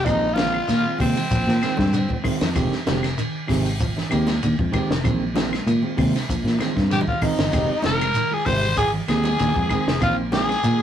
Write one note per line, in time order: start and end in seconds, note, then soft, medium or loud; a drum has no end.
0.05 0.60 A#1 loud
0.05 0.25 D#3 medium
0.05 0.31 F3 loud
0.05 0.25 G#3 medium
0.05 0.25 C4 medium
0.05 0.35 D#4 loud
0.05 0.39 D#4 medium
0.05 0.25 F4 medium
0.05 kick loud
0.05 ride bell medium
0.05 low conga medium
0.05 claves medium
0.05 shekere medium
0.34 0.63 D3 medium
0.34 0.56 D#3 medium
0.34 0.56 G#3 medium
0.34 0.57 C4 medium
0.34 0.98 F4 loud
0.34 0.57 F4 medium
0.34 snare medium
0.34 ride bell medium
0.34 high conga medium
0.34 shekere soft
0.38 1.00 F4 medium
0.54 claves medium
0.68 0.83 A#2 medium
0.68 0.94 D#3 loud
0.68 snare soft
0.68 ride bell medium
0.68 shekere loud
0.84 1.00 G#3 soft
0.84 1.00 C4 soft
0.84 0.99 F4 soft
0.98 1.14 D#2 medium
0.98 1.25 C3 medium
0.98 1.19 D#3 medium
0.98 1.20 G#3 medium
0.98 2.20 C4 loud
0.98 1.20 C4 medium
0.98 2.21 C4 medium
0.98 1.20 F4 medium
0.98 kick medium
0.98 open hi-hat medium
0.98 high conga medium
0.98 claves medium
0.98 shekere soft
1.16 ride bell medium
1.16 low conga medium
1.30 1.45 A#1 loud
1.30 1.56 F3 medium
1.30 kick medium
1.30 ride bell medium
1.30 shekere loud
1.47 1.60 A#2 medium
1.47 snare soft
1.47 low conga medium
1.61 1.79 D#3 medium
1.61 1.88 D#3 medium
1.61 1.78 G#3 medium
1.61 1.77 C4 medium
1.61 1.79 F4 medium
1.61 muted fingered electric bass stroke soft
1.61 snare soft
1.61 ride bell medium
1.61 claves medium
1.61 shekere soft
1.77 2.05 G2 medium
1.77 1.97 G#3 soft
1.77 1.96 C4 medium
1.77 kick medium
1.77 snare soft
1.77 high conga loud
1.93 2.19 D3 medium
1.93 ride bell medium
1.93 shekere medium
2.09 kick medium
2.09 high conga medium
2.24 2.43 D#3 medium
2.24 2.49 D#3 medium
2.24 2.44 G#3 medium
2.24 2.44 C4 medium
2.24 2.44 F4 medium
2.24 muted fingered electric bass stroke soft
2.24 kick medium
2.24 open hi-hat medium
2.24 claves medium
2.24 shekere soft
2.41 2.54 F2 loud
2.41 snare medium
2.41 ride bell medium
2.55 2.70 F1 medium
2.55 2.75 D#3 medium
2.55 2.81 F3 medium
2.55 2.75 G#3 medium
2.55 2.75 C4 loud
2.55 2.75 G4 medium
2.55 kick loud
2.55 ride bell medium
2.55 low conga medium
2.55 claves medium
2.55 shekere medium
2.72 snare soft
2.86 3.14 F1 loud
2.86 3.12 D3 medium
2.86 3.06 D#3 medium
2.86 3.06 G#3 medium
2.86 3.06 C4 medium
2.86 3.06 G4 medium
2.86 snare medium
2.86 ride bell medium
2.86 high conga loud
2.86 shekere soft
3.03 snare soft
3.03 ride bell medium
3.03 claves medium
3.18 3.43 D#3 medium
3.18 ride bell medium
3.18 shekere medium
3.47 4.03 G#1 medium
3.47 3.74 C3 medium
3.47 3.67 D#3 medium
3.47 3.68 G#3 medium
3.47 3.68 C4 medium
3.47 3.68 G4 medium
3.47 kick medium
3.47 snare soft
3.47 open hi-hat medium
3.47 high conga medium
3.47 claves medium
3.47 shekere soft
3.66 ride bell soft
3.79 4.06 F3 medium
3.79 kick medium
3.79 ride bell soft
3.79 shekere loud
3.97 snare soft
3.97 low conga medium
4.09 4.39 D#2 loud
4.09 4.29 D#3 medium
4.09 4.37 D#3 medium
4.09 4.30 G#3 medium
4.09 4.30 C4 medium
4.09 4.30 G4 medium
4.09 ride bell medium
4.09 claves medium
4.09 shekere soft
4.27 snare soft
4.27 ride bell medium
4.27 high conga loud
4.43 4.58 D#2 loud
4.43 4.68 D3 medium
4.43 ride bell medium
4.43 shekere medium
4.59 4.71 F2 medium
4.59 kick medium
4.59 high conga medium
4.72 4.92 D#3 medium
4.72 4.99 D#3 medium
4.72 4.92 G#3 medium
4.72 4.92 C4 medium
4.72 4.92 G4 medium
4.72 kick medium
4.72 ride bell medium
4.72 high conga medium
4.72 claves medium
4.72 shekere soft
4.90 5.02 F1 medium
4.90 snare medium
5.03 5.58 A#1 loud
5.03 5.23 D#3 medium
5.03 5.30 F3 medium
5.03 5.23 G#3 medium
5.03 5.23 C4 medium
5.03 muted clean electric guitar stroke loud
5.03 kick loud
5.03 ride bell medium
5.03 low conga medium
5.03 claves medium
5.03 shekere medium
5.34 5.61 D3 medium
5.34 5.54 D#3 medium
5.34 5.54 G#3 medium
5.34 5.55 C4 medium
5.34 5.55 F4 medium
5.34 snare medium
5.34 ride bell medium
5.34 high conga loud
5.34 shekere soft
5.53 snare soft
5.53 high conga medium
5.53 claves medium
5.66 5.81 A#2 medium
5.66 5.92 D#3 medium
5.66 ride bell medium
5.66 shekere medium
5.82 5.96 G#3 medium
5.82 5.96 C4 medium
5.82 5.96 F4 medium
5.82 high conga medium
5.96 6.12 D#2 medium
5.96 6.23 C3 medium
5.96 6.16 D#3 medium
5.96 6.17 G#3 medium
5.96 6.17 C4 medium
5.96 6.17 F4 medium
5.96 kick medium
5.96 open hi-hat medium
5.96 high conga medium
5.96 claves medium
5.96 shekere soft
6.16 snare soft
6.16 ride bell soft
6.29 6.44 A#1 loud
6.29 6.55 F3 medium
6.29 kick medium
6.29 ride bell soft
6.29 shekere loud
6.44 6.57 A#2 medium
6.44 snare soft
6.44 low conga medium
6.59 6.84 D#3 medium
6.59 6.76 D#3 medium
6.59 6.76 G#3 medium
6.59 6.75 C4 medium
6.59 6.75 F4 medium
6.59 muted fingered electric bass stroke soft
6.59 snare soft
6.59 ride bell medium
6.59 high conga loud
6.59 claves medium
6.59 shekere soft
6.76 7.04 G2 medium
6.76 6.95 G#3 soft
6.76 6.94 C4 soft
6.76 6.94 F4 medium
6.76 kick medium
6.76 snare soft
6.82 high conga medium
6.91 7.16 D3 medium
6.91 7.00 G4 loud
6.91 ride bell medium
6.91 low conga medium
6.91 shekere medium
6.95 7.02 G4 medium
7.01 low conga loud
7.08 7.24 F4 loud
7.08 7.27 F4 medium
7.08 kick medium
7.12 low conga medium
7.21 7.41 D#3 medium
7.21 7.48 D#3 medium
7.21 7.41 G#3 medium
7.21 7.42 C4 medium
7.21 7.84 D#4 loud
7.21 7.42 F4 medium
7.21 muted fingered electric bass stroke soft
7.21 kick medium
7.21 open hi-hat medium
7.21 low conga medium
7.21 claves medium
7.21 shekere soft
7.26 7.86 D#4 medium
7.31 low conga medium
7.38 7.51 G1 medium
7.38 snare medium
7.38 ride bell medium
7.38 low conga loud
7.51 7.68 F1 medium
7.51 7.72 D#3 medium
7.51 7.78 F3 medium
7.51 7.72 G#3 medium
7.51 7.73 C4 medium
7.51 7.73 G4 medium
7.51 kick loud
7.51 ride bell medium
7.51 low conga medium
7.51 claves medium
7.51 shekere medium
7.82 8.11 F1 medium
7.82 8.10 D3 medium
7.82 8.04 D#3 medium
7.82 8.04 G#3 medium
7.82 8.04 C4 medium
7.82 8.35 A#4 loud
7.82 muted clean electric guitar stroke medium
7.82 snare medium
7.82 ride bell medium
7.82 high conga loud
7.82 shekere soft
7.87 8.35 A#4 medium
7.99 ride bell medium
7.99 high conga medium
7.99 claves medium
8.14 8.41 D#3 medium
8.14 ride bell medium
8.14 shekere medium
8.31 8.47 G#4 loud
8.31 8.50 G#4 medium
8.31 high conga medium
8.45 9.00 G#1 medium
8.45 8.72 C3 medium
8.45 8.65 D#3 medium
8.45 8.66 G#3 medium
8.45 8.66 G4 medium
8.45 8.77 C5 loud
8.45 8.78 C5 medium
8.45 kick medium
8.45 open hi-hat medium
8.45 high conga medium
8.45 claves medium
8.45 shekere soft
8.63 ride bell medium
8.63 low conga medium
8.76 9.03 F3 medium
8.76 8.91 G#4 loud
8.76 8.92 G#4 medium
8.76 kick medium
8.76 ride bell medium
8.76 shekere medium
8.93 low conga medium
9.08 9.35 D#2 loud
9.08 9.28 D#3 medium
9.08 9.34 D#3 medium
9.08 9.28 G#3 medium
9.08 9.28 C4 medium
9.08 9.28 G4 medium
9.08 9.98 G#4 loud
9.08 9.99 G#4 loud
9.08 snare soft
9.08 ride bell medium
9.08 claves medium
9.08 shekere soft
9.24 ride bell medium
9.24 high conga loud
9.39 9.54 D#2 loud
9.39 9.65 D3 medium
9.39 ride bell medium
9.39 shekere medium
9.54 9.69 F2 medium
9.54 kick medium
9.54 high conga medium
9.69 9.96 D#3 medium
9.69 9.90 D#3 medium
9.69 9.90 G#3 medium
9.69 9.90 C4 medium
9.69 kick medium
9.69 ride bell medium
9.69 high conga medium
9.69 claves medium
9.69 shekere soft
9.87 10.00 F1 medium
9.87 snare medium
10.01 10.55 A#1 loud
10.01 10.21 D#3 medium
10.01 10.27 F3 medium
10.01 10.21 C4 medium
10.01 10.21 F4 medium
10.01 10.16 F4 loud
10.01 10.16 F4 medium
10.01 muted clean electric guitar stroke medium
10.01 kick loud
10.01 ride bell medium
10.01 low conga medium
10.01 claves medium
10.01 shekere medium
10.32 10.58 D3 medium
10.32 10.52 D#3 medium
10.32 10.52 G#3 medium
10.32 10.52 C4 medium
10.32 10.53 F4 medium
10.32 10.82 G#4 medium
10.32 10.82 G#4 loud
10.32 snare medium
10.32 ride bell soft
10.32 high conga loud
10.32 shekere soft
10.49 snare soft
10.49 high conga medium
10.49 claves medium
10.63 10.78 A#2 medium
10.63 10.82 D#3 medium
10.63 ride bell medium
10.63 shekere medium